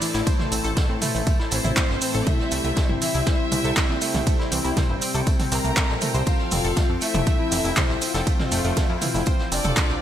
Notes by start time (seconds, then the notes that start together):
Already playing: D4 E4 C5 D5 A5
0.01 A2 E3 A3, open hi-hat, tambourine, maracas
0.14 A1 E4, snare, maracas
0.27 A2 E3 A3 C5, kick, ride, tambourine, maracas
0.39 C5, snare, mid tom
0.52 A1 C4, open hi-hat, tambourine, maracas
0.64 A1 A4, maracas
0.77 A3, kick, snare, ride, tambourine, maracas
0.89 A2 C4
1.01 A3, mid tom, open hi-hat, tambourine, maracas
1.14 A1 A3, maracas
1.27 A3, kick, ride, tambourine, maracas
1.40 E4, snare
1.51 A1 E3 C4 C5, open hi-hat, tambourine, maracas
1.64 A1 E4, mid tom, maracas
1.77 C5, kick, snare, clap, ride, tambourine, maracas
1.89 G1 C5, snare
2.01 A2 E3 A3 C4, open hi-hat, tambourine, maracas
2.14 A1 A4, maracas
2.27 C3 G3 A3 C4 E4 E5 G5, kick, mid tom, ride, tambourine, maracas
2.39 C4, snare
2.51 C2 A3, snare, open hi-hat, tambourine, maracas
2.64 C2 A3, maracas
2.76 A3, kick, snare, ride, tambourine, maracas
2.89 G1 E4, mid tom
3.02 E3 E4 E5, snare, open hi-hat, tambourine, maracas
3.14 C2 E4, maracas
3.26 C5, kick, snare, ride, tambourine, maracas
3.39 C5
3.52 C2 C4, mid tom, open hi-hat, tambourine, maracas
3.64 C2 A4, maracas
3.76 A3, kick, snare, clap, ride, tambourine, maracas
3.89 A#1 C4, snare
4.01 C3 G3 A3 C4, open hi-hat, tambourine, maracas
4.14 C2 A3, snare, mid tom, maracas
4.27 C3 G3 A3 C4 G5, kick, ride, tambourine, maracas
4.39 E4, snare
4.52 C2 E3, open hi-hat, tambourine, maracas
4.64 C2 E4, maracas
4.77 C5, kick, snare, mid tom, ride, tambourine, maracas
4.89 G1 C5
5.02 C4, open hi-hat, tambourine, maracas
5.14 C2 A4, maracas
5.27 A3, kick, ride, tambourine, maracas
5.39 C4, snare, mid tom, open hi-hat
5.52 C2 C4 A#4 A#5, open hi-hat, tambourine, maracas
5.64 C2 A3, maracas
5.76 C3 G3 A3 C4, kick, snare, clap, ride, tambourine, maracas
5.89 A#1 A4, snare
6.01 A3, mid tom, open hi-hat, tambourine, maracas
6.14 C2 C5, maracas
6.26 F3 C4 F4 A4 C5 F5, kick, ride, tambourine, maracas
6.39 C5, snare
6.51 F1 C4, snare, mid tom, open hi-hat, tambourine, maracas
6.64 F1 A4, maracas
6.76 A3, kick, snare, ride, tambourine, maracas
6.89 F2 C4
7.01 A3 E4 E5, open hi-hat, tambourine, maracas
7.14 F1 A3, mid tom, maracas
7.26 A3, kick, ride, tambourine, maracas
7.39 E4
7.51 F1 E3, snare, open hi-hat, tambourine, maracas
7.64 F1 E4, closed hi-hat, maracas
7.76 C5, kick, snare, clap, mid tom, ride, tambourine, maracas
7.89 C2 C5, snare
8.01 F3 C4 F4, open hi-hat, tambourine, maracas
8.14 F1 A4, snare, maracas
8.27 F3 A3 C4 F4, kick, ride, tambourine, maracas
8.39 C4, snare, mid tom
8.52 F1 A3, open hi-hat, tambourine, maracas
8.64 F1 A3, maracas
8.77 A3, kick, snare, ride, tambourine, maracas
8.89 F2 E4
9.01 E3, mid tom, open hi-hat, tambourine, maracas
9.14 F1 E4, maracas
9.26 C5, kick, ride, tambourine, maracas
9.39 C5, snare
9.52 F1 C4 D4 D5, open hi-hat, tambourine, maracas
9.64 F1 A4, mid tom, maracas
9.76 A3, kick, snare, clap, ride, tambourine, maracas
9.89 C2 C4, snare